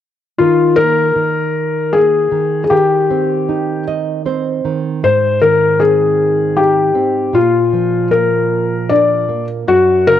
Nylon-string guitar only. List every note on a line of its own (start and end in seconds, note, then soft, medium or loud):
0.40 1.15 D#3 medium
0.77 1.92 A#3 soft
1.16 2.30 D#3 soft
1.93 2.69 A#3 soft
2.32 2.69 D#3 soft
2.71 4.63 D#3 medium
3.11 4.24 C4 soft
3.49 4.99 D#4 soft
3.88 4.24 D#5 medium
4.26 5.00 C4 medium
4.26 4.99 C5 medium
4.65 5.02 D#3 soft
5.03 7.29 G#2 medium
5.42 6.91 D#3 medium
5.79 6.93 C4 soft
6.56 7.31 D#4 medium
6.95 7.32 C4 soft
7.33 9.64 A#2 medium
7.73 9.25 F3 soft
8.11 9.28 A#3 soft
8.90 9.66 D4 medium
9.29 9.67 A#3 soft
9.68 10.20 F#2 medium
10.08 10.20 C#3 soft